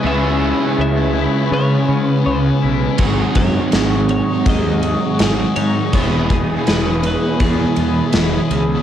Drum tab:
RD |--------|xxxxxxxx|xxxxxxxx|
SD |--------|--o---o-|--o---o-|
BD |--------|oo--o---|oo--o---|